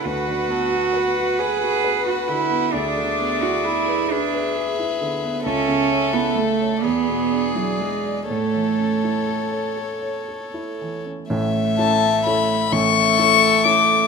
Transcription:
X:1
M:6/8
L:1/16
Q:3/8=43
K:A
V:1 name="Violin"
f12 | e6 e6 | e6 d6 | c12 |
e6 e6 |]
V:2 name="Violin"
B2 A2 B8 | d6 B6 | A6 G6 | A8- A z3 |
z2 a2 b2 c'4 d'2 |]
V:3 name="Viola"
B12 | G6 G6 | A6 G6 | A12 |
z6 A6 |]
V:4 name="Grand piano"
D,, D, B, F B F B F B F D, B, | D,, D, B, E G B G B G E D, B, | C,, C, C E A c E,, B,, D E G d | A,, E, C E A c A c A E E, C |
[A,,,A,,]2 [CEA]2 [CEA]2 [A,,,A,,]2 [CEA]2 [CEA]2 |]
V:5 name="Cello"
F6 G3 F E2 | D3 F E2 D2 z4 | C3 B, A,2 B,3 F, G,2 | A,6 z6 |
A,6 A,6 |]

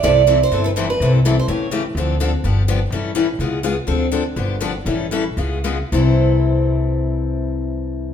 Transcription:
X:1
M:4/4
L:1/16
Q:"Swing" 1/4=250
K:C
V:1 name="Steel-string acoustic guitar"
d4 z2 c3- c/2 A/2 B2 c2 B2- | B2 z2 A2 c2 ^c6 z2 | z16 | z16 |
z16 | z16 | z16 | z16 |]
V:2 name="Steel-string acoustic guitar"
[C,E,G,CEA]2 z2 [C,E,G,CEA]2 z2 [C,E,G,CEA]2 z2 [C,E,G,CEA]2 z2 | [C,E,G,CEA]2 z2 [C,E,G,CEA]2 z2 [^C,E,A,^CG]2 z2 [C,E,A,CG]2 z2 | [D,F,CDA]2 z2 [D,F,CDA]2 z2 [D,F,B,DG]2 z2 [D,F,B,DG]2 z2 | [E,G,^CEA]2 z2 [E,G,CEA]2 z2 [_D,_A,_CF_A]2 z2 [D,A,CFA]2 z2 |
[D,F,CDA]2 z2 [D,F,CDA]2 z2 [D,F,B,DG]2 z2 [D,F,B,DG]2 z2 | [E,G,^CEA]2 z2 [E,G,CEA]2 z2 [_D,_A,_CF_A]2 z2 [D,A,CFA]2 z2 | [C,E,G,CEA]16- | [C,E,G,CEA]16 |]
V:3 name="Upright bass" clef=bass
C,,8 G,,,8 | C,,8 A,,,8 | D,,8 G,,,8 | A,,,8 _D,,8 |
D,,8 G,,,8 | A,,,8 _D,,8 | C,,16- | C,,16 |]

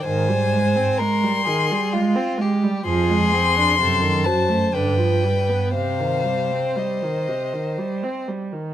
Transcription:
X:1
M:3/4
L:1/16
Q:1/4=63
K:Cm
V:1 name="Violin"
a4 c'6 z2 | c'6 =a2 g4 | f4 e6 z2 |]
V:2 name="Violin"
c4 B2 A2 F2 G2 | A4 =A2 c2 =B4 | c8- c2 z2 |]
V:3 name="Viola" clef=bass
E, G, A, C A, G, E, G, A, C A, G, | F, A, C D C, ^D, ^F, =A, =D, =F, G, =B, | C, E, G, C G, E, C, E, G, C G, E, |]
V:4 name="Cello" clef=bass
A,,4 z8 | F,,4 ^F,,4 G,,4 | C,4 z8 |]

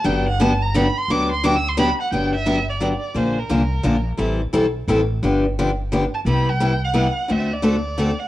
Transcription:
X:1
M:3/4
L:1/16
Q:"Swing" 1/4=174
K:G
V:1 name="Violin"
g2 f2 a2 _b2 =b2 c'2 | d'2 c'2 (3d'2 e'2 c'2 b2 f2 | g2 e4 d6 | c2 _B8 z2 |
z12 | z8 z2 a2 | b2 g4 f6 | e2 d8 f2 |]
V:2 name="Steel-string acoustic guitar"
[D,F,B,DG]2 z2 [D,F,B,DG] z3 [D,F,B,DG] z3 | [D,F,B,DG]2 z2 [D,F,B,DG] z3 [D,F,B,DG] z3 | [D,F,B,DG]2 z2 [D,F,B,DG] z3 [D,F,B,DG] z3 | [D,=F,_B,D_A]2 z2 [D,F,B,DA] z3 [D,F,B,DA] z3 |
[E,G,CEA]2 z2 [E,G,CEA] z3 [E,G,CEA] z3 | [D,=F,B,DG]2 z2 [D,F,B,DG] z3 [D,F,B,DG] z3 | [C,G,B,EG]2 z2 [C,G,B,EG] z3 [C,G,B,EG] z3 | [D,A,CFA]2 z2 [D,A,CFA] z3 [D,A,CFA] z3 |]
V:3 name="Upright bass" clef=bass
G,,,12 | D,,12 | G,,,12 | _B,,,4 C,,4 B,,,4 |
A,,,4 B,,,4 A,,,4 | G,,,12 | C,,12 | D,,12 |]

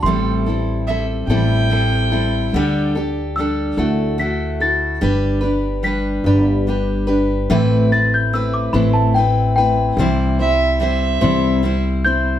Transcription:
X:1
M:6/8
L:1/16
Q:3/8=48
K:Ador
V:1 name="Celesta"
c'4 z8 | z4 e'4 b'2 a'2- | a'4 b'8 | z2 a' g' e' d' b a g2 g2- |
g6 z4 g'2 |]
V:2 name="Fiddle"
z4 e2 g6- | g2 z8 z2 | z12 | z12 |
z2 e2 e4- e z3 |]
V:3 name="Steel-string acoustic guitar"
[A,,E,G,CEA]2 [G,CEA]2 [G,CEA]2 [A,,E,G,CEA]2 [G,CEA]2 [G,CEA]2 | [D,G,DGA]2 [DGA]2 [G,DGA]2 [D,A,EFA]2 [A,EFA]2 [EFA]2 | [G,DGB]2 [DGB]2 [G,DGB]2 [G,DGB]2 [G,DGB]2 [DGB]2 | [A,,E,A,CEB]2 [A,CEB]2 [A,CEB]2 [A,,E,A,CEB]2 [A,CEB]2 [A,CEB]2 |
[C,E,G,CEc]2 [G,CEc]2 [G,CEc]2 [C,E,G,CEc]2 [G,CEc]2 [G,CEc]2 |]
V:4 name="Upright bass" clef=bass
A,,,6 A,,,6 | D,,6 D,,6 | G,,,6 G,,,6 | A,,,6 A,,,6 |
C,,6 C,,6 |]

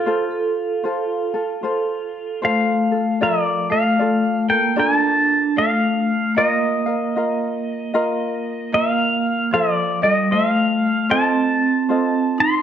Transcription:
X:1
M:4/4
L:1/8
Q:"Swing" 1/4=76
K:F
V:1 name="Pedal steel guitar"
F6 f2 | [K:Bb] d f2 g a2 f2 | e6 f2 | d e f2 a3 c' |]
V:2 name="Ukulele"
[FAc]2 [FAc] [FA] [FAc]2 [FAc] [FA] | [K:Bb] [FABd] [FA] [FAd] [FAB] [FABd]2 [FAd]2 | [FBef] [FBf] [FBef]2 [FBef]2 [FBef]2 | [FAc] [FAe] [FAce]2 [FAce]2 [FAce]2 |]
V:3 name="Vibraphone"
A6 A,2 | [K:Bb] F, A,2 B, D2 A,2 | B,6 B,2 | F, G, A,2 C3 E |]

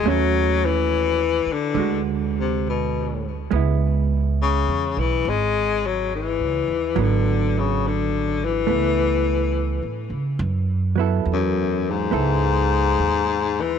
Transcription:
X:1
M:4/4
L:1/16
Q:"Swing" 1/4=70
K:F#m
V:1 name="Hollow-body jazz guitar"
[A,CF]8 [D,G,F]8 | [G,B,E]16 | [F,B,]8 [A,B,]8 | z2 [F,B,EA]6 [B,EA]8 |]
V:2 name="Baritone saxophone" clef=bass
F,2 E,4 D,2 z2 ^B,,2 =B,,3 z | z4 C,2 E,2 G,2 F,2 E,4 | D,2 C,2 D,2 E,8 z2 | z4 F,,2 G,,8 E,2 |]
V:3 name="Upright bass" clef=bass
^D,,6 z2 =D,,8 | C,,4- (3C,,2 E,,2 B,,,2 G,,,4- (3G,,,2 C,,2 ^D,,2 | G,,,8 C,,4- (3C,,2 A,,2 C,2 | F,,4 E,,4 C,,4 ^D,,4 |]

